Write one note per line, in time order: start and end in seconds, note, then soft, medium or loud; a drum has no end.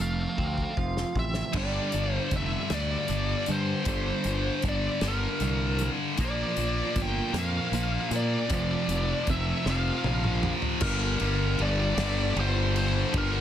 0.00 0.26 F1 medium
0.00 1.16 F2 medium
0.00 1.56 A3 medium
0.00 0.74 A4 medium
0.00 1.19 F5 medium
0.00 closed hi-hat medium
0.38 0.64 D2 medium
0.38 1.55 C4 medium
0.38 kick medium
0.58 kick soft
0.77 1.03 F1 medium
0.77 1.55 F3 medium
0.77 kick medium
0.97 snare medium
1.15 1.41 A1 medium
1.15 1.55 C3 medium
1.15 kick medium
1.19 1.57 E5 medium
1.34 snare medium
1.53 1.78 G1 medium
1.53 2.72 G2 medium
1.53 1.92 G2 medium
1.53 2.69 D3 medium
1.53 1.92 D3 medium
1.53 2.69 G3 medium
1.53 1.92 G3 medium
1.53 kick loud
1.53 crash loud
1.57 2.15 D5 medium
1.92 2.17 G1 medium
1.92 2.29 G2 medium
1.92 2.29 D3 medium
1.92 closed hi-hat medium
2.15 2.36 C5 medium
2.31 2.55 F1 medium
2.31 2.67 G2 medium
2.31 2.68 D3 medium
2.31 kick medium
2.31 closed hi-hat medium
2.37 2.73 E5 medium
2.69 2.95 D2 medium
2.69 3.06 G2 medium
2.69 3.84 G2 medium
2.69 3.85 D3 medium
2.69 3.06 D3 medium
2.69 3.84 G3 medium
2.69 snare loud
2.69 closed hi-hat medium
2.74 3.52 D5 medium
3.08 3.33 G1 medium
3.08 3.44 G2 medium
3.08 3.45 D3 medium
3.08 closed hi-hat medium
3.46 3.72 G2 medium
3.46 3.84 G2 medium
3.46 3.84 D3 medium
3.46 closed hi-hat medium
3.51 4.62 C5 medium
3.85 4.10 G1 medium
3.85 5.00 G2 medium
3.85 4.24 G2 medium
3.85 5.01 D3 medium
3.85 4.24 D3 medium
3.85 4.24 G3 medium
3.85 5.00 G3 medium
3.85 kick loud
3.85 closed hi-hat medium
4.24 4.49 G1 medium
4.24 4.61 G2 medium
4.24 4.61 D3 medium
4.24 closed hi-hat medium
4.62 4.87 G1 medium
4.62 5.00 G2 medium
4.62 5.00 D3 medium
4.62 kick medium
4.62 closed hi-hat medium
4.69 5.07 D5 medium
5.01 5.26 G1 medium
5.01 5.38 G2 soft
5.01 6.17 G2 medium
5.01 6.17 D3 medium
5.01 5.39 D3 medium
5.01 6.16 G3 medium
5.01 snare loud
5.01 closed hi-hat medium
5.08 5.89 A#4 medium
5.40 5.88 C2 medium
5.40 5.77 G2 medium
5.40 5.77 D3 medium
5.40 closed hi-hat medium
5.79 6.16 G2 medium
5.79 6.16 D3 medium
5.79 closed hi-hat medium
6.17 6.42 A#1 loud
6.17 7.32 A#2 medium
6.17 6.56 A#2 medium
6.17 7.34 F3 medium
6.17 6.57 F3 medium
6.17 7.32 A#3 loud
6.17 6.57 A#3 medium
6.17 kick loud
6.17 closed hi-hat medium
6.25 7.02 D5 medium
6.57 6.81 A#1 medium
6.57 6.93 A#2 medium
6.57 6.93 F3 medium
6.57 closed hi-hat medium
6.96 7.20 G1 medium
6.96 7.32 A#2 medium
6.96 7.32 F3 medium
6.96 kick medium
6.96 closed hi-hat medium
7.02 7.36 G5 loud
7.33 7.58 F2 medium
7.33 7.70 A#2 medium
7.33 8.50 A#2 medium
7.33 7.70 F3 medium
7.33 8.49 F3 medium
7.33 8.48 A#3 medium
7.33 snare loud
7.33 closed hi-hat medium
7.39 8.10 F5 loud
7.72 7.96 A#1 medium
7.72 8.09 A#2 medium
7.72 8.09 F3 medium
7.72 closed hi-hat medium
8.11 8.35 A#2 medium
8.11 8.47 A#2 medium
8.11 8.47 F3 medium
8.11 closed hi-hat medium
8.16 8.53 D5 medium
8.49 8.74 F1 loud
8.49 9.64 F2 medium
8.49 8.88 F2 medium
8.49 9.64 C3 medium
8.49 8.88 C3 medium
8.49 9.65 F3 medium
8.49 8.88 F3 medium
8.49 kick loud
8.49 closed hi-hat loud
8.54 9.26 D5 medium
8.88 9.12 F1 medium
8.88 9.25 F2 medium
8.88 9.25 C3 medium
8.88 closed hi-hat medium
9.27 9.52 F1 medium
9.27 9.64 F2 medium
9.27 9.64 C3 medium
9.27 9.66 E5 medium
9.27 kick medium
9.27 closed hi-hat medium
9.66 9.90 F1 loud
9.66 10.02 F2 medium
9.66 10.82 F2 medium
9.66 10.02 C3 medium
9.66 10.81 C3 medium
9.66 10.80 F3 medium
9.66 snare medium
9.70 10.52 F5 medium
10.04 10.52 A#1 medium
10.04 10.41 F2 medium
10.04 10.41 C3 medium
10.04 high tom medium
10.24 mid tom medium
10.43 10.80 F2 medium
10.43 10.80 C3 medium
10.43 mid tom medium
10.62 floor tom medium
10.81 11.16 G1 medium
10.81 11.20 G2 medium
10.81 11.20 D3 medium
10.81 11.21 G3 loud
10.81 11.62 A#4 medium
10.81 kick loud
10.81 crash loud
11.20 11.55 G1 medium
11.20 11.60 G2 medium
11.20 11.59 D3 medium
11.20 11.60 G3 medium
11.20 ride medium
11.59 11.93 G1 medium
11.59 11.96 G2 medium
11.59 11.97 D3 medium
11.59 11.97 G3 medium
11.59 12.35 D5 loud
11.59 ride medium
11.97 12.31 G1 medium
11.97 12.34 G2 medium
11.97 12.35 D3 loud
11.97 12.35 G3 loud
11.97 snare loud
11.97 ride loud
12.35 13.03 G1 medium
12.35 13.11 G2 medium
12.35 13.12 D3 medium
12.35 13.12 G3 medium
12.35 ride medium
12.40 12.77 C5 loud
12.76 13.13 C5 medium
12.76 ride medium
13.13 13.41 G1 medium
13.13 13.41 G2 medium
13.13 13.41 D3 medium
13.13 13.41 G3 loud
13.13 kick loud
13.13 ride loud
13.18 13.41 A#4 medium